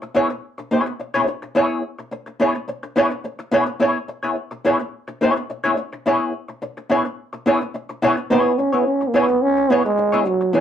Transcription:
0.02 muted hollow-body jazz guitar stroke soft
0.15 0.31 B3 medium
0.15 0.30 E4 medium
0.15 0.29 G#4 medium
0.15 0.29 C#5 loud
0.30 muted hollow-body jazz guitar stroke medium
0.58 muted hollow-body jazz guitar stroke soft
0.71 0.92 B3 medium
0.71 0.86 E4 medium
0.71 0.86 G#4 medium
0.71 0.85 C#5 medium
0.86 muted hollow-body jazz guitar stroke medium
1.00 muted hollow-body jazz guitar stroke soft
1.14 1.26 B3 medium
1.14 1.27 E4 medium
1.14 1.27 G#4 medium
1.14 1.28 C#5 medium
1.27 muted hollow-body jazz guitar stroke soft
1.42 muted hollow-body jazz guitar stroke soft
1.55 1.81 B3 medium
1.55 1.82 E4 medium
1.55 1.82 G#4 medium
1.55 1.82 C#5 medium
1.99 muted hollow-body jazz guitar stroke soft
2.11 muted hollow-body jazz guitar stroke soft
2.26 muted hollow-body jazz guitar stroke soft
2.40 2.56 B3 medium
2.40 2.55 E4 medium
2.40 2.55 G#4 medium
2.40 2.54 C#5 medium
2.55 muted hollow-body jazz guitar stroke soft
2.68 muted hollow-body jazz guitar stroke soft
2.83 muted hollow-body jazz guitar stroke soft
2.96 3.12 B3 medium
2.96 3.11 E4 medium
2.96 3.10 G#4 medium
2.96 3.09 C#5 loud
3.10 muted hollow-body jazz guitar stroke medium
3.24 muted hollow-body jazz guitar stroke soft
3.39 muted hollow-body jazz guitar stroke medium
3.51 3.68 B3 medium
3.51 3.67 E4 loud
3.51 3.66 G#4 loud
3.51 3.65 C#5 loud
3.66 muted hollow-body jazz guitar stroke medium
3.80 3.96 B3 medium
3.80 3.97 E4 medium
3.80 3.97 G#4 medium
3.80 3.97 C#5 medium
4.08 muted hollow-body jazz guitar stroke soft
4.23 4.36 B3 soft
4.23 4.35 E4 medium
4.23 4.35 G#4 soft
4.23 4.35 C#5 medium
4.51 muted hollow-body jazz guitar stroke soft
4.65 4.81 B3 medium
4.65 4.80 E4 loud
4.65 4.79 G#4 loud
4.65 4.78 C#5 medium
4.79 muted hollow-body jazz guitar stroke soft
5.08 muted hollow-body jazz guitar stroke medium
5.21 5.42 B3 medium
5.21 5.36 E4 medium
5.21 5.36 G#4 medium
5.21 5.35 C#5 medium
5.36 muted hollow-body jazz guitar stroke soft
5.50 muted hollow-body jazz guitar stroke soft
5.64 5.76 B3 medium
5.64 5.76 E4 medium
5.64 5.77 G#4 medium
5.64 5.77 C#5 medium
5.77 muted hollow-body jazz guitar stroke soft
5.93 muted hollow-body jazz guitar stroke soft
6.06 6.32 B3 medium
6.06 6.32 E4 medium
6.06 6.32 G#4 medium
6.06 6.33 C#5 medium
6.48 muted hollow-body jazz guitar stroke soft
6.62 muted hollow-body jazz guitar stroke medium
6.77 muted hollow-body jazz guitar stroke soft
6.90 7.06 B3 medium
6.90 7.05 E4 medium
6.90 7.04 G#4 medium
6.90 7.04 C#5 medium
7.05 muted hollow-body jazz guitar stroke soft
7.33 muted hollow-body jazz guitar stroke soft
7.46 7.62 B3 medium
7.46 7.61 E4 medium
7.46 7.61 G#4 loud
7.46 7.60 C#5 medium
7.61 muted hollow-body jazz guitar stroke soft
7.74 muted hollow-body jazz guitar stroke soft
7.89 muted hollow-body jazz guitar stroke soft
8.02 8.18 B3 loud
8.02 8.17 E4 loud
8.02 8.17 G#4 medium
8.02 8.16 C#5 loud
8.17 muted hollow-body jazz guitar stroke soft
8.30 8.51 B3 medium
8.30 8.59 B3 loud
8.30 8.51 E4 medium
8.30 8.51 G#4 medium
8.30 8.52 C#5 medium
8.58 8.75 C#4 medium
8.58 muted hollow-body jazz guitar stroke soft
8.72 8.86 B3 loud
8.72 8.85 B3 soft
8.72 8.85 E4 soft
8.72 8.85 G#4 medium
8.72 8.84 C#5 medium
8.87 9.09 C#4 medium
9.01 muted hollow-body jazz guitar stroke soft
9.08 9.16 A#3 medium
9.14 9.30 B3 medium
9.14 9.44 B3 loud
9.14 9.29 E4 medium
9.14 9.28 G#4 medium
9.14 9.27 C#5 medium
9.28 muted hollow-body jazz guitar stroke soft
9.42 9.72 C#4 loud
9.57 muted hollow-body jazz guitar stroke soft
9.70 9.86 B3 medium
9.70 9.85 B3 loud
9.70 9.85 E4 medium
9.70 9.85 G#4 medium
9.70 9.84 C#5 medium
9.85 10.28 G#3 loud
9.85 muted hollow-body jazz guitar stroke soft
9.98 muted hollow-body jazz guitar stroke soft
10.12 10.24 B3 medium
10.12 10.25 E4 medium
10.12 10.25 G#4 medium
10.12 10.26 C#5 medium
10.26 10.56 F#3 loud
10.26 muted hollow-body jazz guitar stroke medium
10.41 muted hollow-body jazz guitar stroke soft
10.53 10.60 E3 loud
10.53 10.60 B3 medium
10.53 10.60 E4 medium
10.53 10.60 G#4 medium
10.53 10.60 C#5 medium

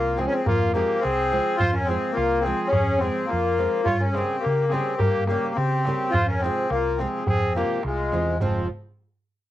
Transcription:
0.00 0.25 C2 loud
0.00 0.19 A#3 loud
0.00 0.18 F4 medium
0.07 darbuka tek soft
0.16 0.40 F3 medium
0.16 0.40 G#3 medium
0.16 0.25 C4 medium
0.16 0.40 C4 medium
0.16 0.41 F4 medium
0.16 0.41 G#4 medium
0.16 0.26 G#4 medium
0.16 darbuka tek medium
0.26 0.34 C#4 medium
0.26 0.33 A#4 medium
0.32 0.47 C4 loud
0.32 0.46 G#4 medium
0.45 0.82 F2 loud
0.45 0.71 A#3 medium
0.45 0.73 F4 loud
0.45 darbuka dum loud
0.73 0.97 F3 medium
0.73 0.97 G#3 medium
0.73 1.03 A#3 loud
0.73 0.97 C4 medium
0.73 0.97 F4 medium
0.73 1.01 G4 loud
0.73 0.98 G#4 medium
0.73 darbuka tek medium
1.00 1.60 C4 loud
1.00 1.56 G#4 loud
1.00 darbuka tek medium
1.05 1.39 C2 medium
1.19 darbuka tek soft
1.32 1.54 F3 medium
1.32 1.54 G#3 medium
1.32 1.54 C4 medium
1.32 1.55 F4 medium
1.32 1.55 G#4 medium
1.32 darbuka tek medium
1.56 1.74 F4 loud
1.56 1.73 C5 loud
1.56 darbuka dum medium
1.62 1.95 F2 loud
1.72 1.87 C#4 medium
1.72 1.86 A#4 medium
1.84 2.16 C4 loud
1.84 2.13 G#4 medium
1.88 2.11 F3 medium
1.88 2.11 G#3 medium
1.88 2.11 C4 medium
1.88 2.11 F4 medium
1.88 2.12 G#4 medium
1.88 darbuka tek medium
2.11 2.43 A#3 loud
2.11 2.41 F4 loud
2.17 2.51 C2 loud
2.17 darbuka tek medium
2.40 2.69 C4 loud
2.40 2.69 G#4 medium
2.44 2.67 F3 medium
2.44 2.68 G#3 medium
2.44 2.68 C4 medium
2.44 2.68 F4 medium
2.44 2.68 G#4 medium
2.44 darbuka tek medium
2.67 3.00 C#4 loud
2.67 2.98 G#4 loud
2.73 3.09 F2 loud
2.73 darbuka dum loud
2.88 darbuka tek soft
2.98 3.24 F3 medium
2.98 3.29 C4 loud
2.98 3.27 G#4 medium
2.98 darbuka tek medium
3.03 3.24 G#3 medium
3.03 3.24 C4 medium
3.03 3.25 F4 medium
3.03 3.25 G#4 medium
3.18 darbuka tek soft
3.26 3.87 A#3 loud
3.26 3.82 F4 loud
3.30 3.66 F2 loud
3.30 darbuka tek medium
3.46 darbuka tek soft
3.58 3.80 F3 medium
3.58 3.81 G#3 medium
3.58 3.81 C4 medium
3.58 3.81 F4 medium
3.58 3.82 G#4 medium
3.58 darbuka tek medium
3.84 4.01 F4 loud
3.84 3.99 C#5 medium
3.84 darbuka dum loud
3.88 4.22 G2 loud
4.00 4.15 C#4 medium
4.00 4.10 A#4 medium
4.11 4.44 C4 loud
4.11 4.38 G#4 medium
4.11 darbuka tek medium
4.15 4.37 C#3 medium
4.15 4.38 G3 medium
4.15 4.38 A#3 medium
4.15 4.38 C#4 medium
4.15 4.38 G4 medium
4.39 4.71 A#3 loud
4.39 4.67 G4 medium
4.45 4.79 C#3 medium
4.45 darbuka tek medium
4.58 darbuka tek soft
4.68 4.94 C#3 medium
4.68 5.00 C4 loud
4.68 4.96 G#4 medium
4.68 darbuka tek medium
4.72 4.94 G3 medium
4.72 4.94 A#3 medium
4.72 4.95 C#4 medium
4.72 4.95 G4 medium
4.97 5.24 A#3 medium
4.97 5.25 G4 loud
4.97 darbuka dum loud
5.01 5.35 G2 loud
5.26 5.51 C#3 medium
5.26 5.57 A#3 loud
5.26 5.54 G4 medium
5.26 darbuka tek medium
5.30 5.51 G3 medium
5.30 5.51 A#3 medium
5.30 5.51 C#4 medium
5.30 5.52 G4 medium
5.54 5.91 C#3 loud
5.54 6.14 C4 loud
5.54 6.09 G4 medium
5.54 darbuka tek medium
5.72 darbuka tek soft
5.85 6.08 C#3 medium
5.85 6.08 G3 medium
5.85 6.08 A#3 medium
5.85 6.08 C#4 medium
5.85 6.09 G4 medium
5.85 darbuka tek medium
6.10 6.48 F2 loud
6.10 6.26 F4 loud
6.10 6.28 C5 loud
6.10 darbuka dum loud
6.26 6.41 C#4 medium
6.26 6.41 A#4 medium
6.39 6.70 C4 loud
6.39 6.69 G#4 medium
6.39 darbuka tek medium
6.43 6.65 C3 medium
6.43 6.65 F3 medium
6.43 6.65 G#3 medium
6.43 6.66 C4 medium
6.43 6.66 F4 medium
6.69 7.05 C2 loud
6.69 6.99 A#3 loud
6.69 6.98 F4 medium
6.69 darbuka tek medium
6.87 darbuka tek soft
6.97 7.21 C3 medium
6.97 7.21 F3 medium
6.97 7.21 G#3 medium
6.97 7.24 C4 medium
6.97 7.21 C4 medium
6.97 7.26 G#4 medium
6.97 darbuka tek medium
7.01 7.22 F4 medium
7.25 7.62 F2 loud
7.25 7.56 C4 medium
7.25 7.54 G#4 loud
7.25 darbuka dum loud
7.42 darbuka tek soft
7.55 7.78 C3 medium
7.55 7.78 F3 medium
7.55 7.78 G#3 medium
7.55 7.82 A#3 medium
7.55 7.78 C4 medium
7.55 7.78 F4 medium
7.55 7.82 G4 medium
7.55 darbuka tek medium
7.83 8.10 C2 medium
7.83 8.38 G#3 medium
7.83 8.26 F4 medium
7.83 darbuka tek medium
8.12 8.38 E2 medium
8.12 8.34 C3 medium
8.12 8.34 F3 medium
8.12 8.35 G#3 medium
8.12 8.35 C4 medium
8.12 8.35 F4 medium
8.12 darbuka tek medium
8.40 8.67 F1 loud
8.40 8.67 F3 medium
8.40 8.68 F3 medium
8.40 8.67 G#3 medium
8.40 8.67 C4 medium
8.40 8.68 C4 medium
8.40 8.68 F4 medium
8.40 darbuka dum loud

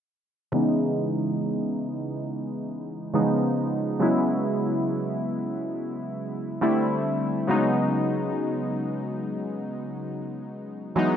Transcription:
0.52 3.10 C#3 medium
0.52 3.10 E3 medium
0.52 3.10 G#3 medium
0.52 3.11 B3 medium
0.52 3.11 D#4 medium
3.13 3.98 C#3 medium
3.13 3.21 E3 medium
3.13 4.00 G#3 medium
3.13 4.00 B3 medium
3.13 4.02 D#4 medium
3.20 4.04 F3 medium
3.99 6.57 C#3 medium
3.99 6.58 F#3 medium
3.99 6.58 G#3 medium
3.99 6.58 B3 medium
3.99 6.59 E4 medium
6.61 7.49 D3 medium
6.61 7.49 G3 medium
6.61 7.49 A3 medium
6.61 7.49 C4 medium
6.61 7.49 E4 medium
7.47 10.92 C#3 medium
7.47 10.93 F#3 medium
7.47 10.93 G#3 medium
7.47 10.93 B3 medium
7.47 10.94 D#4 medium
10.96 11.17 E3 medium
10.96 11.17 F#3 medium
10.96 11.17 G#3 medium
10.96 11.17 B3 medium
10.96 11.17 D#4 medium

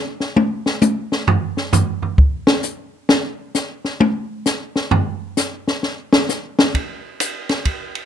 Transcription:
0.20 snare soft
0.36 high tom medium
0.66 snare soft
0.81 hi-hat pedal medium
0.81 high tom medium
1.12 snare soft
1.27 floor tom medium
1.57 snare soft
1.73 floor tom loud
1.73 hi-hat pedal medium
2.02 floor tom soft
2.18 kick medium
2.47 snare medium
2.63 hi-hat pedal medium
3.09 snare medium
3.55 snare soft
3.55 hi-hat pedal medium
3.85 snare soft
4.00 high tom medium
4.46 snare soft
4.46 hi-hat pedal medium
4.76 snare soft
4.91 floor tom loud
5.37 snare soft
5.37 hi-hat pedal medium
5.68 snare soft
5.83 snare soft
6.13 snare loud
6.29 snare soft
6.29 hi-hat pedal medium
6.59 snare medium
6.74 kick soft
6.74 ride medium
7.20 hi-hat pedal medium
7.20 ride medium
7.49 snare soft
7.49 ride soft
7.65 kick soft
7.65 ride medium
7.95 ride soft

